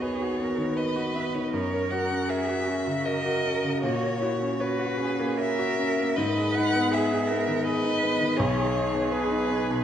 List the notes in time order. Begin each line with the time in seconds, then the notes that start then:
Already playing: D#2 B3 F#4 B4
0.01 G#4 B4 C#5
0.22 F#4
0.39 B3 A#4
0.58 D#3
0.76 B4 D#5
0.96 F#4
1.15 B3 E5
1.25 D#5
1.35 D#3 C#5
1.43 D#5
1.52 F#2 A#4 C#5
1.74 A#4
1.91 F#4 F#5
2.11 C#4
2.28 G#4 A#4 E5
2.49 F#4
2.68 C#4 F#4
2.87 C#3
3.05 A#4 D#5
3.26 F#4
3.45 C#4
3.64 C#3
3.83 A#2 F#4 C#5
4.03 C#5
4.21 E4 F#4
4.42 C#4
4.58 F#4 B4 C#5
4.79 F#4
4.98 C#4 G#4
5.20 A#3
5.38 A#4 C#5 E5
5.59 F#4
5.79 C#4
5.99 A#3
6.15 G#2 B4 D#5
6.37 G#4
6.55 D#4 F#5
6.75 B3
6.91 G#4 E5
7.12 D#4
7.27 B3 A#4
7.48 D#3
7.64 G#4 B4 D#5
7.84 D#4
8.02 B3
8.20 D#3
8.37 B1 G#4 C#5
8.57 G#4
8.74 D#4 G#4
8.94 B3
9.12 G#4 B4
9.30 D#4
9.50 B3
9.71 B2